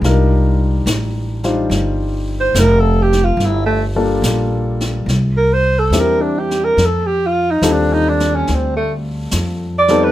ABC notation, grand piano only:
X:1
M:4/4
L:1/8
Q:"Swing" 1/4=71
K:Cdor
V:1 name="Grand piano"
[G,DEFB] z2 [G,DEFc] z4 | z [G,B,DFA] z4 [G,CD=EG] z | z2 [G,CDFA]3 z2 [G,=B,CEA] |]